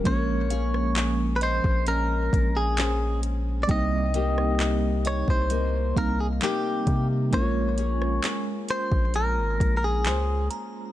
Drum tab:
HH |x-x-x-x-x-x-x-x-|x-x-x-x-x-x-x-x-|x-x-x-x-x-x-x-x-|
CP |----x-------x---|----x-------x---|----x-------x---|
SD |---r------------|---r------------|---r------------|
BD |o------o--o-----|o------o--o---o-|o------o--o-----|